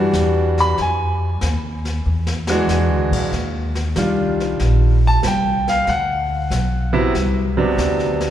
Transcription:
0.00 0.12 G2 medium
0.00 0.73 E3 medium
0.00 0.74 G3 medium
0.00 0.74 D4 medium
0.00 0.74 F#4 medium
0.13 0.75 E2 medium
0.13 snare medium
0.13 hi-hat pedal medium
0.58 0.78 B5 loud
0.58 snare soft
0.78 1.40 F2 medium
0.78 1.39 G#5 medium
0.78 brush sweep soft
0.78 snare soft
1.41 2.03 D#2 medium
1.41 snare medium
1.41 hi-hat pedal medium
1.85 snare soft
2.06 2.67 E2 medium
2.27 snare medium
2.47 3.28 E3 medium
2.47 3.28 G#3 medium
2.47 3.29 D4 medium
2.47 3.29 F#4 medium
2.47 snare medium
2.67 2.89 E2 medium
2.67 snare medium
2.67 hi-hat pedal medium
2.89 3.10 D2 medium
3.10 3.30 B1 medium
3.10 kick medium
3.10 crash medium
3.32 3.94 D#2 medium
3.32 brush sweep soft
3.32 snare soft
3.75 snare soft
3.96 4.58 C2 medium
3.96 4.95 D#3 medium
3.96 4.95 G3 soft
3.96 4.95 D4 soft
3.96 4.95 F4 medium
3.96 snare medium
3.96 hi-hat pedal medium
4.40 snare soft
4.60 5.21 A#1 medium
4.60 brush sweep medium
4.60 snare soft
5.07 5.25 A5 medium
5.23 5.85 C2 medium
5.23 snare medium
5.23 hi-hat pedal medium
5.28 5.68 G5 medium
5.68 5.84 F5 medium
5.68 snare soft
5.85 6.49 D2 medium
5.85 5.90 F5 medium
5.85 brush sweep soft
5.85 snare soft
5.89 6.92 F#5 medium
6.50 7.12 B1 medium
6.50 snare medium
6.50 hi-hat pedal medium
6.93 7.11 C3 medium
6.93 7.12 F#3 medium
6.93 7.12 B3 medium
6.93 7.12 E4 medium
7.14 7.76 C2 medium
7.14 brush sweep soft
7.14 snare soft
7.57 8.30 C3 medium
7.57 8.30 F#3 medium
7.57 8.30 B3 medium
7.57 8.30 D4 medium
7.78 8.30 D2 medium
7.78 snare medium
7.78 hi-hat pedal medium
7.99 snare soft
8.20 snare soft

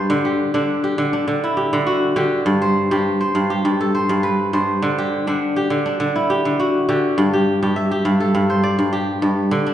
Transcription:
0.00 0.16 G2 medium
0.00 0.19 G4 medium
0.00 0.40 A4 medium
0.00 0.74 B4 medium
0.00 0.99 C5 medium
0.10 0.53 D3 medium
0.25 0.83 G4 medium
0.54 0.97 D3 medium
0.54 1.13 D4 medium
0.84 1.57 G4 medium
0.98 1.26 D3 medium
1.13 2.81 D4 medium
1.28 1.72 D3 medium
1.44 3.00 E4 medium
1.57 2.16 G4 medium
1.73 2.15 D3 medium
1.87 2.52 F#4 medium
2.16 2.51 D3 medium
2.16 2.91 G4 medium
2.46 2.90 G2 medium
2.62 3.20 C5 medium
2.91 3.34 G2 medium
2.91 3.50 G4 medium
3.21 3.94 C5 medium
3.35 3.64 G2 medium
3.50 4.91 G4 medium
3.65 4.08 G2 medium
3.81 5.12 A4 medium
3.95 4.53 C5 medium
4.09 4.52 G2 medium
4.23 5.46 B4 medium
4.53 4.87 G2 medium
4.53 5.72 C5 medium
4.82 5.26 D3 medium
4.98 5.56 G4 medium
5.27 5.69 D3 medium
5.27 5.85 D4 medium
5.56 6.30 G4 medium
5.70 5.99 D3 medium
5.86 7.54 D4 medium
6.00 6.44 D3 medium
6.16 7.72 E4 medium
6.30 6.88 G4 medium
6.45 6.88 D3 medium
6.60 7.24 F#4 medium
6.89 7.22 D3 medium
6.89 7.33 G4 medium
7.18 7.61 G2 medium
7.33 7.62 G4 medium
7.63 8.04 G2 medium
7.63 7.91 G4 medium
7.76 8.80 E5 medium
7.91 8.92 G4 medium
8.05 8.33 G2 medium
8.20 9.52 A4 medium
8.35 8.77 G2 medium
8.50 9.68 C5 medium
8.63 9.74 D5 medium
8.79 9.21 G2 medium
8.93 9.74 G4 medium
9.22 9.57 G2 medium
9.51 9.74 D3 medium
9.66 9.74 D4 medium

